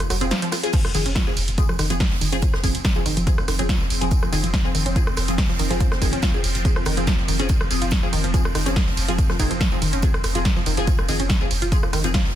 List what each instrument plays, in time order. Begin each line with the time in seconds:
0.00 cross-stick, closed hi-hat, tambourine
0.10 sub bass F1, synth arpeggio sound F#3, cross-stick, open hi-hat, ride, tambourine
0.21 sub bass F1, synth stab F3 C4 G#4, synth arpeggio sound C4, closed hi-hat, tambourine
0.31 synth arpeggio sound F3, snare, closed hi-hat, ride, tambourine
0.42 synth arpeggio sound F3, closed hi-hat, tambourine
0.52 synth arpeggio sound F4, cross-stick, snare, open hi-hat, ride, tambourine
0.63 synth stab F3 C4 G#4, closed hi-hat, tambourine
0.73 synth arpeggio sound F3, synth drone F3 C4, kick, closed hi-hat, crash, ride, tambourine
0.84 sub bass F1, cross-stick, tambourine
0.94 sub bass F1, synth arpeggio sound D#3, synth stab F3 C4 G#4, open hi-hat, ride, tambourine
1.06 sub bass F1, synth arpeggio sound C#4, closed hi-hat, tambourine
1.15 synth arpeggio sound F4, kick, snare, closed hi-hat, ride, tambourine
1.27 sub bass F1, synth stab F3 C4 G#4, tambourine
1.37 sub bass F1, open hi-hat, ride, tambourine
1.48 sub bass F1, closed hi-hat, tambourine
1.58 synth stab F3 C4 G#4, kick, closed hi-hat, ride, tambourine
1.69 sub bass F1, synth arpeggio sound F3, cross-stick, tambourine
1.79 sub bass F1, synth arpeggio sound D#3, cross-stick, snare, open hi-hat, ride, tambourine
1.90 sub bass F1, synth arpeggio sound F3, synth stab F3 C4 G#4, closed hi-hat, tambourine
2.00 synth arpeggio sound F3, kick, snare, closed hi-hat, open hi-hat, ride, tambourine
2.11 sub bass F1, snare, tambourine
2.21 sub bass F1, synth arpeggio sound D#3, open hi-hat, ride, tambourine
2.32 sub bass F1, synth stab F3 C4 G#4, synth arpeggio sound C#4, closed hi-hat, tambourine
2.42 synth arpeggio sound F4, kick, closed hi-hat, ride, tambourine
2.53 sub bass F1, cross-stick, snare, tambourine
2.64 sub bass F1, synth stab F3 C4 G#4, kick, open hi-hat, ride, tambourine
2.75 sub bass F1, closed hi-hat, tambourine
2.85 kick, snare, closed hi-hat, ride, tambourine
2.96 sub bass F1, synth stab F3 C4 G#4, synth arpeggio sound F3, tambourine
3.05 sub bass F1, synth arpeggio sound D#3, open hi-hat, ride, tambourine
3.16 sub bass F1, synth arpeggio sound F3, closed hi-hat, tambourine
3.27 synth stab F3 C4 G#4, synth arpeggio sound F3, kick, closed hi-hat, ride, tambourine
3.38 sub bass F1, cross-stick, tambourine
3.48 sub bass F1, synth arpeggio sound D#3, cross-stick, snare, open hi-hat, ride, tambourine
3.59 sub bass F1, synth stab F3 C4 G#4, synth arpeggio sound C#4, closed hi-hat, tambourine
3.69 synth arpeggio sound F4, kick, snare, closed hi-hat, ride, tambourine
3.80 sub bass F1, snare, tambourine
3.90 sub bass F1, open hi-hat, ride, tambourine
4.01 sub bass F1, synth stab F3 C4 G#4, closed hi-hat, tambourine
4.11 kick, closed hi-hat, ride, tambourine
4.22 sub bass F1, synth arpeggio sound F3, cross-stick, tambourine
4.32 sub bass F1, synth arpeggio sound D#3, synth stab F3 C4 G#4, open hi-hat, ride, tambourine
4.43 sub bass F1, synth arpeggio sound F3, closed hi-hat, tambourine
4.54 synth arpeggio sound F3, kick, snare, closed hi-hat, ride, tambourine
4.65 sub bass F1, synth stab F3 C4 G#4, tambourine
4.75 sub bass F1, synth arpeggio sound D#3, open hi-hat, ride, tambourine
4.86 sub bass F1, synth arpeggio sound C#4, closed hi-hat, tambourine
4.96 synth stab F3 C4 G#4, synth arpeggio sound F4, kick, closed hi-hat, ride, tambourine
5.07 sub bass F1, cross-stick, tambourine
5.17 sub bass F1, cross-stick, snare, open hi-hat, ride, tambourine
5.28 sub bass F1, synth stab F3 C4 G#4, closed hi-hat, tambourine
5.38 kick, snare, closed hi-hat, open hi-hat, ride, tambourine
5.49 sub bass F1, synth arpeggio sound F3, snare, tambourine
5.59 sub bass F1, synth arpeggio sound D#3, open hi-hat, ride, tambourine
5.70 sub bass F1, synth arpeggio sound F3, synth stab F3 C4 G#4, closed hi-hat, tambourine
5.80 synth arpeggio sound F3, kick, closed hi-hat, ride, tambourine
5.92 sub bass F1, cross-stick, snare, tambourine
6.02 sub bass F1, synth arpeggio sound D#3, synth stab F3 C4 G#4, kick, open hi-hat, ride, tambourine
6.13 sub bass F1, synth arpeggio sound C#4, closed hi-hat, tambourine
6.22 synth arpeggio sound F4, kick, snare, closed hi-hat, ride, tambourine
6.34 sub bass F1, synth stab F3 C4 G#4, tambourine
6.44 sub bass F1, open hi-hat, ride, tambourine
6.55 sub bass F1, closed hi-hat, tambourine
6.65 synth stab F3 C4 G#4, kick, closed hi-hat, ride, tambourine
6.76 sub bass F1, synth arpeggio sound F3, cross-stick, tambourine
6.85 sub bass F1, synth arpeggio sound D#3, cross-stick, snare, open hi-hat, ride, tambourine
6.97 sub bass F1, synth stab F3 C4 G#4, synth arpeggio sound F3, closed hi-hat, tambourine
7.07 synth arpeggio sound F3, kick, snare, closed hi-hat, ride, tambourine
7.18 sub bass F1, snare, tambourine
7.28 sub bass F1, synth arpeggio sound D#3, open hi-hat, ride, tambourine
7.39 sub bass F1, synth stab F3 C4 G#4, synth arpeggio sound C#4, closed hi-hat, tambourine
7.49 kick, closed hi-hat, ride, tambourine
7.61 sub bass F1, cross-stick, tambourine
7.70 sub bass F1, synth stab F3 C4 G#4, open hi-hat, ride, tambourine
7.82 sub bass F1, synth arpeggio sound F4, closed hi-hat, tambourine
7.91 kick, snare, closed hi-hat, ride, tambourine
8.03 sub bass F1, synth arpeggio sound F3, synth stab F3 C4 G#4, tambourine
8.13 sub bass F1, synth arpeggio sound D#3, open hi-hat, ride, tambourine
8.24 sub bass F1, synth arpeggio sound F3, closed hi-hat, tambourine
8.34 synth arpeggio sound F3, synth stab F3 C4 G#4, kick, closed hi-hat, ride, tambourine
8.45 sub bass F1, cross-stick, tambourine
8.55 sub bass F1, synth arpeggio sound D#3, cross-stick, snare, open hi-hat, ride, tambourine
8.66 sub bass F1, synth stab F3 C4 G#4, synth arpeggio sound C#4, closed hi-hat, tambourine
8.76 kick, snare, closed hi-hat, open hi-hat, ride, tambourine
8.87 sub bass F1, snare, tambourine
8.97 sub bass F1, open hi-hat, ride, tambourine
9.08 sub bass F1, synth stab F3 C4 G#4, synth arpeggio sound F4, closed hi-hat, tambourine
9.18 kick, closed hi-hat, ride, tambourine
9.29 sub bass F1, synth arpeggio sound F3, cross-stick, snare, tambourine
9.39 sub bass F1, synth arpeggio sound D#3, synth stab F3 C4 G#4, kick, open hi-hat, ride, tambourine
9.51 sub bass F1, synth arpeggio sound F3, closed hi-hat, tambourine
9.61 synth arpeggio sound F3, kick, snare, closed hi-hat, ride, tambourine
9.72 sub bass F1, synth stab F3 C4 G#4, tambourine
9.82 sub bass F1, synth arpeggio sound D#3, open hi-hat, ride, tambourine
9.93 sub bass F1, synth arpeggio sound C#4, closed hi-hat, tambourine
10.02 synth stab F3 C4 G#4, kick, closed hi-hat, ride, tambourine
10.14 sub bass F1, cross-stick, tambourine
10.24 sub bass F1, cross-stick, snare, open hi-hat, ride, tambourine
10.35 sub bass F1, synth stab F3 C4 G#4, synth arpeggio sound F4, closed hi-hat, tambourine
10.45 kick, snare, closed hi-hat, ride, tambourine
10.56 sub bass F1, synth arpeggio sound F3, snare, tambourine
10.66 sub bass F1, synth arpeggio sound D#3, open hi-hat, ride, tambourine
10.77 sub bass F1, synth stab F3 C4 G#4, synth arpeggio sound F3, closed hi-hat, tambourine
10.87 synth arpeggio sound F3, kick, closed hi-hat, ride, tambourine
10.98 sub bass F1, cross-stick, tambourine
11.08 sub bass F1, synth arpeggio sound D#3, synth stab F3 C4 G#4, open hi-hat, ride, tambourine
11.20 sub bass F1, synth arpeggio sound C#4, closed hi-hat, tambourine
11.29 kick, snare, closed hi-hat, ride, tambourine
11.41 sub bass F1, synth stab F3 C4 G#4, tambourine
11.51 sub bass F1, open hi-hat, ride, tambourine
11.62 sub bass F1, synth arpeggio sound F4, closed hi-hat, tambourine
11.72 synth stab F3 C4 G#4, kick, closed hi-hat, ride, tambourine
11.83 sub bass F1, synth arpeggio sound F3, cross-stick, tambourine
11.93 sub bass F1, synth arpeggio sound D#3, cross-stick, snare, open hi-hat, ride, tambourine
12.04 sub bass F1, synth stab F3 C4 G#4, synth arpeggio sound F3, closed hi-hat, tambourine
12.14 synth arpeggio sound F3, kick, snare, closed hi-hat, open hi-hat, ride, tambourine
12.25 sub bass F1, snare, tambourine